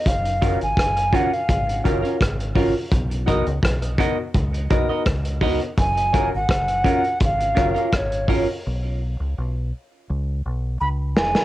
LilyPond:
<<
  \new Staff \with { instrumentName = "Flute" } { \time 4/4 \key fis \major \tempo 4 = 84 eis''8. gis''8. fis''16 eis''4 r4 r16 | r1 | gis''8. fis''4~ fis''16 eis''4 cis''8. r16 | r2. b''8 gis''8 | }
  \new Staff \with { instrumentName = "Clean electric guitar" } { \time 4/4 \key fis \major r8 <cis' eis' ais'>16 r8. <cis' eis' ais'>16 r8. <cis' eis' ais'>16 <cis' eis' ais'>16 r8 <cis' eis' ais'>16 r16 | r8 <fis' ais' dis''>16 r8. <fis' ais' dis''>16 r8. <fis' ais' dis''>16 <fis' ais' dis''>16 r8 <fis' ais' dis''>16 r16 | r8 <cis' eis' ais'>16 r8. <cis' eis' ais'>16 r8. <cis' eis' ais'>16 <cis' eis' ais'>16 r8 <cis' eis' ais'>16 r16 | r1 | }
  \new Staff \with { instrumentName = "Grand piano" } { \time 4/4 \key fis \major r8 <cis' eis' fis' ais'>16 r8. <cis' eis' fis' ais'>16 r8. <cis' eis' fis' ais'>16 <cis' eis' fis' ais'>16 r8 <cis' eis' fis' ais'>16 r16 | r8 <b dis' fis' ais'>16 r8. <b dis' fis' ais'>16 r8. <b dis' fis' ais'>16 <b dis' fis' ais'>16 r8 <b dis' fis' ais'>16 r16 | r8 <cis' eis' fis' ais'>16 r8. <cis' eis' fis' ais'>16 r8. <cis' eis' fis' ais'>16 <cis' eis' fis' ais'>16 r8 <cis' eis' fis' ais'>16 r16 | r1 | }
  \new Staff \with { instrumentName = "Fingered electric bass" } { \clef bass \time 4/4 \key fis \major fis,,8. gis,,16 fis,,8 r8 gis,,8 fis,,16 r16 gis,,8. r16 | b,,8. cis,16 b,,8 r8 cis,8 b,,16 r16 cis,8. r16 | fis,,8. gis,,16 fis,,8 r8 gis,,8 fis,,16 r16 gis,,8. r16 | b,,8. cis,16 b,,8 r8 cis,8 b,,8 cis,8 eis,,16 r16 | }
  \new DrumStaff \with { instrumentName = "Drums" } \drummode { \time 4/4 <hh bd>16 hh16 <hh bd>16 hh16 <hh bd ss>16 hh16 <hh bd>16 hh16 <hh bd>16 hh16 <hh bd>16 hh16 <hh bd ss>16 hh16 <hho bd>8 | <hh bd>16 hh16 <hh bd>16 hh16 <hh bd ss>16 hh16 <hh bd>8 <hh bd>16 hh16 <hh bd>8 <hh bd ss>16 hh16 <hho bd>16 hh16 | <hh bd>16 hh16 <hh bd>8 <hh bd ss>16 hh16 <hh bd>16 hh16 <hh bd>16 hh16 <hh bd ss>16 hh16 <hh bd ss>16 hh16 <hho bd>8 | r4 r4 r4 r8 sn16 sn16 | }
>>